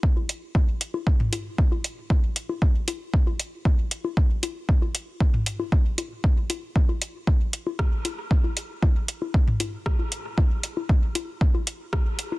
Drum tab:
HH |--x---x---x---x-|--x---x---x---x-|--x---x---x---x-|--x---x---x---x-|
SD |----------------|----------------|----------------|------------r---|
T2 |---------o------|----------------|---------o------|----------------|
CG |-o--o--o--o--o--|o--o--o--o--o--o|--o--o--o--o--o-|--o--o--o--o--o-|
BD |o---o---o---o---|o---o---o---o---|o---o---o---o---|o---o---o---o---|

HH |--x---x---x---x-|--x---x---x---x-|
SD |------------r---|------------r---|
T2 |---------o------|----------------|
CG |-o--o--o--o--o--|o--o--o--o--o--o|
BD |o---o---o---o---|o---o---o---o---|